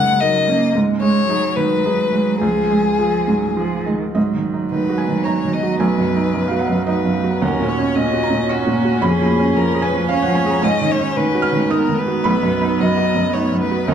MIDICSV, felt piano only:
0, 0, Header, 1, 2, 480
1, 0, Start_track
1, 0, Tempo, 547445
1, 658, Time_signature, 3, 2, 24, 8
1, 1624, Tempo, 570885
1, 4024, Tempo, 539568
1, 12241, End_track
2, 0, Start_track
2, 0, Title_t, "Felt piano"
2, 0, Program_c, 0, 0
2, 0, Control_c, 0, 64, 127
2, 0, Note_on_c, 0, 42, 56
2, 0, Note_on_c, 0, 49, 45
2, 0, Note_on_c, 0, 61, 42
2, 0, Note_on_c, 0, 63, 41
2, 0, Note_on_c, 0, 70, 49
2, 186, Note_off_c, 0, 63, 0
2, 186, Note_on_c, 0, 63, 46
2, 188, Note_off_c, 0, 70, 0
2, 188, Note_on_c, 0, 70, 50
2, 327, Note_off_c, 0, 49, 0
2, 399, Note_off_c, 0, 63, 0
2, 400, Note_off_c, 0, 70, 0
2, 428, Note_off_c, 0, 61, 0
2, 428, Note_on_c, 0, 61, 44
2, 625, Note_off_c, 0, 42, 0
2, 658, Note_on_c, 0, 44, 51
2, 662, Note_off_c, 0, 61, 0
2, 676, Control_c, 0, 64, 0
2, 806, Control_c, 0, 64, 127
2, 893, Note_on_c, 0, 56, 43
2, 1132, Note_on_c, 0, 63, 42
2, 1140, Note_on_c, 0, 68, 43
2, 1280, Note_off_c, 0, 56, 0
2, 1353, Note_off_c, 0, 63, 0
2, 1357, Note_off_c, 0, 68, 0
2, 1375, Note_on_c, 0, 51, 43
2, 1627, Note_on_c, 0, 63, 39
2, 1627, Note_on_c, 0, 68, 45
2, 1764, Note_off_c, 0, 51, 0
2, 1838, Note_off_c, 0, 63, 0
2, 1838, Note_off_c, 0, 68, 0
2, 1852, Note_on_c, 0, 56, 38
2, 2065, Note_off_c, 0, 44, 0
2, 2095, Note_off_c, 0, 56, 0
2, 2098, Note_on_c, 0, 37, 48
2, 2116, Control_c, 0, 64, 0
2, 2252, Control_c, 0, 64, 127
2, 2337, Note_on_c, 0, 56, 36
2, 2577, Note_on_c, 0, 65, 34
2, 2582, Note_on_c, 0, 68, 37
2, 2727, Note_off_c, 0, 56, 0
2, 2799, Note_off_c, 0, 65, 0
2, 2802, Note_off_c, 0, 68, 0
2, 2821, Note_on_c, 0, 44, 36
2, 3066, Note_on_c, 0, 65, 34
2, 3071, Note_on_c, 0, 68, 38
2, 3216, Note_off_c, 0, 44, 0
2, 3290, Note_off_c, 0, 65, 0
2, 3292, Note_off_c, 0, 68, 0
2, 3315, Note_on_c, 0, 56, 32
2, 3524, Note_off_c, 0, 37, 0
2, 3553, Note_on_c, 0, 75, 60
2, 3557, Note_off_c, 0, 56, 0
2, 3560, Note_on_c, 0, 44, 45
2, 3576, Control_c, 0, 64, 0
2, 3695, Control_c, 0, 64, 127
2, 3722, Note_on_c, 0, 51, 36
2, 3882, Note_on_c, 0, 63, 40
2, 3967, Note_off_c, 0, 51, 0
2, 4034, Note_on_c, 0, 51, 40
2, 4129, Note_off_c, 0, 63, 0
2, 4193, Note_on_c, 0, 66, 40
2, 4230, Note_off_c, 0, 75, 0
2, 4266, Note_on_c, 0, 80, 63
2, 4289, Note_off_c, 0, 51, 0
2, 4363, Note_on_c, 0, 51, 41
2, 4449, Note_off_c, 0, 66, 0
2, 4492, Note_off_c, 0, 80, 0
2, 4510, Note_on_c, 0, 82, 68
2, 4515, Note_on_c, 0, 63, 40
2, 4614, Note_off_c, 0, 51, 0
2, 4683, Note_on_c, 0, 51, 38
2, 4770, Note_off_c, 0, 63, 0
2, 4846, Note_on_c, 0, 66, 39
2, 4935, Note_off_c, 0, 51, 0
2, 4959, Note_off_c, 0, 44, 0
2, 4960, Note_off_c, 0, 82, 0
2, 4995, Note_on_c, 0, 80, 68
2, 5001, Note_off_c, 0, 66, 0
2, 5002, Note_on_c, 0, 35, 48
2, 5010, Control_c, 0, 64, 0
2, 5160, Control_c, 0, 64, 127
2, 5160, Note_on_c, 0, 42, 38
2, 5316, Note_on_c, 0, 63, 40
2, 5415, Note_off_c, 0, 42, 0
2, 5478, Note_on_c, 0, 42, 40
2, 5561, Note_off_c, 0, 80, 0
2, 5571, Note_off_c, 0, 63, 0
2, 5601, Note_on_c, 0, 77, 56
2, 5631, Note_on_c, 0, 66, 39
2, 5703, Note_on_c, 0, 78, 68
2, 5709, Note_off_c, 0, 77, 0
2, 5731, Note_off_c, 0, 42, 0
2, 5797, Note_on_c, 0, 42, 39
2, 5888, Note_off_c, 0, 66, 0
2, 5931, Note_off_c, 0, 78, 0
2, 5943, Note_on_c, 0, 75, 68
2, 5954, Note_on_c, 0, 63, 44
2, 6052, Note_off_c, 0, 42, 0
2, 6115, Note_on_c, 0, 42, 41
2, 6211, Note_off_c, 0, 63, 0
2, 6278, Note_on_c, 0, 66, 43
2, 6373, Note_off_c, 0, 42, 0
2, 6397, Note_off_c, 0, 75, 0
2, 6405, Note_off_c, 0, 35, 0
2, 6437, Note_on_c, 0, 39, 53
2, 6438, Note_off_c, 0, 66, 0
2, 6439, Note_on_c, 0, 78, 71
2, 6454, Control_c, 0, 64, 0
2, 6583, Control_c, 0, 64, 127
2, 6601, Note_on_c, 0, 46, 42
2, 6756, Note_on_c, 0, 61, 44
2, 6854, Note_off_c, 0, 46, 0
2, 6917, Note_on_c, 0, 46, 46
2, 7010, Note_off_c, 0, 61, 0
2, 7075, Note_on_c, 0, 66, 46
2, 7118, Note_off_c, 0, 78, 0
2, 7162, Note_on_c, 0, 82, 77
2, 7169, Note_off_c, 0, 46, 0
2, 7225, Note_on_c, 0, 46, 41
2, 7326, Note_off_c, 0, 66, 0
2, 7377, Note_off_c, 0, 82, 0
2, 7392, Note_on_c, 0, 61, 47
2, 7392, Note_on_c, 0, 85, 76
2, 7480, Note_off_c, 0, 46, 0
2, 7546, Note_on_c, 0, 46, 45
2, 7643, Note_off_c, 0, 61, 0
2, 7707, Note_on_c, 0, 66, 46
2, 7800, Note_off_c, 0, 46, 0
2, 7828, Note_off_c, 0, 39, 0
2, 7832, Note_off_c, 0, 85, 0
2, 7860, Note_on_c, 0, 83, 79
2, 7861, Note_on_c, 0, 41, 57
2, 7865, Note_off_c, 0, 66, 0
2, 7878, Control_c, 0, 64, 0
2, 8006, Control_c, 0, 64, 127
2, 8030, Note_on_c, 0, 53, 48
2, 8191, Note_on_c, 0, 61, 51
2, 8279, Note_off_c, 0, 53, 0
2, 8346, Note_on_c, 0, 53, 48
2, 8438, Note_off_c, 0, 61, 0
2, 8505, Note_on_c, 0, 68, 48
2, 8538, Note_off_c, 0, 83, 0
2, 8574, Note_on_c, 0, 80, 86
2, 8595, Note_off_c, 0, 53, 0
2, 8665, Note_on_c, 0, 53, 46
2, 8753, Note_off_c, 0, 68, 0
2, 8795, Note_off_c, 0, 80, 0
2, 8810, Note_on_c, 0, 77, 87
2, 8818, Note_on_c, 0, 61, 52
2, 8913, Note_off_c, 0, 53, 0
2, 8922, Note_off_c, 0, 77, 0
2, 8932, Note_on_c, 0, 78, 72
2, 8979, Note_on_c, 0, 53, 47
2, 9043, Note_off_c, 0, 78, 0
2, 9047, Note_on_c, 0, 80, 77
2, 9071, Note_off_c, 0, 61, 0
2, 9142, Note_on_c, 0, 68, 48
2, 9160, Note_off_c, 0, 80, 0
2, 9182, Note_on_c, 0, 82, 67
2, 9231, Note_off_c, 0, 53, 0
2, 9254, Note_off_c, 0, 41, 0
2, 9286, Note_on_c, 0, 80, 80
2, 9288, Note_off_c, 0, 82, 0
2, 9295, Note_on_c, 0, 44, 58
2, 9296, Note_off_c, 0, 68, 0
2, 9309, Control_c, 0, 64, 0
2, 9445, Control_c, 0, 64, 127
2, 9459, Note_on_c, 0, 51, 49
2, 9614, Note_on_c, 0, 63, 50
2, 9708, Note_off_c, 0, 51, 0
2, 9772, Note_on_c, 0, 51, 48
2, 9866, Note_off_c, 0, 63, 0
2, 9933, Note_on_c, 0, 66, 53
2, 9969, Note_off_c, 0, 80, 0
2, 9997, Note_on_c, 0, 89, 84
2, 10025, Note_off_c, 0, 51, 0
2, 10090, Note_on_c, 0, 51, 47
2, 10186, Note_off_c, 0, 66, 0
2, 10226, Note_off_c, 0, 89, 0
2, 10246, Note_on_c, 0, 63, 54
2, 10249, Note_on_c, 0, 87, 77
2, 10346, Note_off_c, 0, 51, 0
2, 10412, Note_on_c, 0, 51, 49
2, 10507, Note_off_c, 0, 63, 0
2, 10580, Note_on_c, 0, 66, 51
2, 10671, Note_off_c, 0, 51, 0
2, 10702, Note_off_c, 0, 44, 0
2, 10702, Note_off_c, 0, 87, 0
2, 10727, Note_on_c, 0, 83, 93
2, 10739, Note_off_c, 0, 66, 0
2, 10741, Note_on_c, 0, 35, 58
2, 10753, Control_c, 0, 64, 0
2, 10894, Note_on_c, 0, 42, 48
2, 10913, Control_c, 0, 64, 127
2, 11060, Note_on_c, 0, 63, 49
2, 11156, Note_off_c, 0, 42, 0
2, 11226, Note_on_c, 0, 42, 49
2, 11319, Note_off_c, 0, 63, 0
2, 11380, Note_on_c, 0, 66, 47
2, 11481, Note_off_c, 0, 42, 0
2, 11541, Note_on_c, 0, 42, 47
2, 11637, Note_off_c, 0, 66, 0
2, 11711, Note_on_c, 0, 63, 49
2, 11796, Note_off_c, 0, 42, 0
2, 11865, Note_on_c, 0, 42, 46
2, 11962, Note_off_c, 0, 63, 0
2, 12034, Note_on_c, 0, 66, 45
2, 12122, Note_off_c, 0, 42, 0
2, 12145, Note_off_c, 0, 83, 0
2, 12153, Note_off_c, 0, 35, 0
2, 12185, Note_on_c, 0, 39, 55
2, 12185, Note_on_c, 0, 75, 75
2, 12191, Note_off_c, 0, 66, 0
2, 12202, Control_c, 0, 64, 0
2, 12241, Note_off_c, 0, 39, 0
2, 12241, Note_off_c, 0, 75, 0
2, 12241, End_track
0, 0, End_of_file